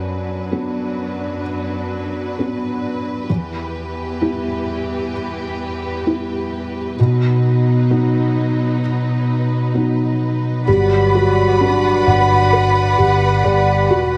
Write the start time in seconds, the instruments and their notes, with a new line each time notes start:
Already playing: felt piano F#2, string section F#2 F#3 D4 B4
0.51 felt piano F#3 B3 D4
2.38 felt piano F#3 B3 D4
3.29 felt piano E2, string section E2 E3 G4
4.21 felt piano G3 B3 E4
6.06 felt piano G3 B3 E4
6.98 string section B2 F#3 D#4, felt piano B2
7.90 felt piano F#3 B3 D#4
9.74 felt piano F#3 B3 D#4
10.67 fingered electric bass G1, french horn section F#3 F#4, felt piano G3, string section B4 D5 F#5 B5
11.15 felt piano F#4
11.61 felt piano D4
12.06 fingered electric bass G1, felt piano F#5
12.53 felt piano B4
12.98 fingered electric bass G1, felt piano G4
13.44 fingered electric bass G1, french horn section G3 G4, felt piano D5
13.90 fingered electric bass E1, felt piano F#4